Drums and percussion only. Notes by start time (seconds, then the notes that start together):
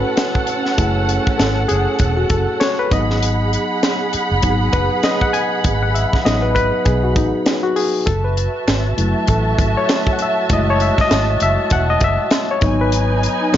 0.17 snare, closed hi-hat
0.35 kick
0.47 closed hi-hat
0.65 snare
0.78 kick, closed hi-hat
1.09 closed hi-hat
1.27 kick
1.39 snare, closed hi-hat
1.69 closed hi-hat
1.99 kick, closed hi-hat
2.30 kick, closed hi-hat
2.61 snare, closed hi-hat
2.91 kick, closed hi-hat
3.10 snare
3.22 closed hi-hat
3.53 closed hi-hat
3.83 snare, closed hi-hat
4.13 closed hi-hat
4.42 kick, closed hi-hat
4.73 kick, closed hi-hat
5.03 snare, closed hi-hat
5.21 kick
5.34 closed hi-hat
5.64 kick, closed hi-hat
5.95 closed hi-hat
6.13 kick, snare
6.26 snare, closed hi-hat
6.56 kick, closed hi-hat
6.85 kick, closed hi-hat
7.16 kick, closed hi-hat
7.46 snare, closed hi-hat
7.76 open hi-hat
8.07 kick, closed hi-hat
8.37 closed hi-hat
8.68 snare, clap, closed hi-hat
8.98 closed hi-hat
9.27 kick, closed hi-hat
9.59 kick, closed hi-hat
9.89 snare, clap, closed hi-hat
10.07 kick
10.19 closed hi-hat
10.49 kick, closed hi-hat
10.80 closed hi-hat
10.98 kick, snare
11.11 snare, clap, closed hi-hat
11.40 closed hi-hat
11.70 kick, closed hi-hat
12.00 kick, closed hi-hat
12.31 snare, clap, closed hi-hat
12.61 kick, closed hi-hat
12.92 closed hi-hat
13.23 closed hi-hat
13.54 snare, closed hi-hat